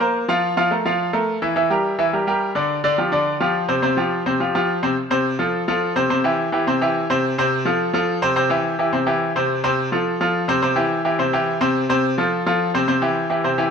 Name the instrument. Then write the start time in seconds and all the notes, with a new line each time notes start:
grand piano
0.00 A#3 A#4 C5
0.28 F3 F4 F5
0.57 F3 F4 F5
0.71 A3 A4 A#4
0.85 F3 F4 F5
1.13 A3 A4 A#4
1.42 E3 E4 E5
1.56 E3 E4 E5
1.70 G3 G4 A#4
1.99 E3 E4 E5
2.13 G3 G4 A#4
2.27 G3 G4 A#4
2.55 D3 D4 D5
2.84 D3 D4 D5
2.98 F3 F4 G4
3.12 D3 D4 D5
3.40 F3 F4 G4
3.68 C3 C4 C5
3.82 C3 C4 C5
3.97 F3 F4 G4
4.26 C3 C4 C5
4.40 F3 F4 G4
4.55 F3 F4 G4
4.83 C3 C4 C5
5.10 C3 C4 C5
5.39 F3 F4 A4
5.68 F3 F4 A4
5.96 C3 C4 C5
6.10 C3 C4 C5
6.24 E3 E4 G4
6.52 E3 E4 G4
6.67 C3 C4 C5
6.81 E3 E4 G4
7.10 C3 C4 C5
7.38 C3 C4 C5
7.65 F3 F4 A4
7.93 F3 F4 A4
8.22 C3 C4 C5
8.36 C3 C4 C5
8.50 E3 E4 G4
8.79 E3 E4 G4
8.93 C3 C4 C5
9.07 E3 E4 G4
9.36 C3 C4 C5
9.64 C3 C4 C5
9.92 F3 F4 A4
10.21 F3 F4 A4
10.48 C3 C4 C5
10.62 C3 C4 C5
10.76 E3 E4 G4
11.05 E3 E4 G4
11.19 C3 C4 C5
11.33 E3 E4 G4
11.61 C3 C4 C5
11.89 C3 C4 C5
12.18 F3 F4 A4
12.46 F3 F4 A4
12.74 C3 C4 C5
12.88 C3 C4 C5
13.02 E3 E4 G4
13.30 E3 E4 G4
13.44 C3 C4 C5
13.58 E3 E4 G4